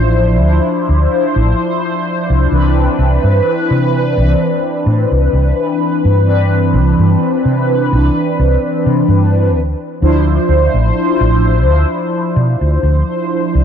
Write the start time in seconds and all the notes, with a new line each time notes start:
Already playing: A1 F3 D4 E4 C5
0.40 D2 F3 D4 E4 C5
0.89 D2
1.36 A1
2.30 C2
2.50 C2 E3 C4 D4 B4
2.99 C2
3.24 G2
3.71 C3
4.16 C2 E3 C4 D4 B4
4.86 A2
5.11 C2
5.33 C2
6.05 G2
6.25 E3 C4 D4 B4
6.74 C2
6.99 G2
7.45 C3
7.91 C2 E3 C4 D4 B4
8.39 C2
8.86 C3
9.08 G2
9.55 D2
10.00 D2 F3 D4 E4 C5
10.49 D2
10.74 A1
11.21 A1
11.66 D2 F3 D4 E4 C5
12.36 B2
12.61 D2
12.83 D2
13.55 C2